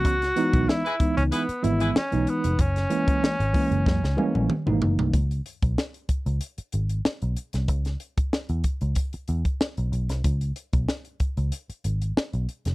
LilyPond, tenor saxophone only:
\new Staff \with { instrumentName = "Tenor saxophone" } { \time 4/4 \key cis \dorian \tempo 4 = 94 fis'4 e'8. cis'16 b8 e'8 cis'8 b8 | cis'2.~ cis'8 r8 | r1 | r1 |
r1 | }